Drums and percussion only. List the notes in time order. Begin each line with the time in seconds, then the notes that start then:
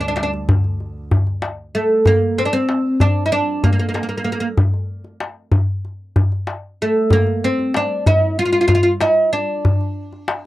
0.17 darbuka tek
0.33 darbuka ka
0.49 darbuka dum
0.64 darbuka ka
0.80 darbuka ka
1.11 darbuka dum
1.27 darbuka ka
1.42 darbuka tek
2.06 darbuka dum
2.22 darbuka ka
2.54 darbuka ka
2.69 darbuka tek
3.00 darbuka dum
3.31 darbuka ka
3.64 darbuka dum
3.79 darbuka ka
3.95 darbuka tek
4.58 darbuka dum
4.74 darbuka ka
5.04 darbuka ka
5.20 darbuka tek
5.52 darbuka dum
5.85 darbuka ka
6.16 darbuka dum
6.32 darbuka ka
6.47 darbuka tek
7.10 darbuka dum
7.27 darbuka ka
7.59 darbuka ka
7.74 darbuka tek
8.06 darbuka dum
8.38 darbuka ka
8.68 darbuka dum
9.01 darbuka tek
9.34 darbuka ka
9.65 darbuka dum
9.81 darbuka ka
10.13 darbuka ka
10.28 darbuka tek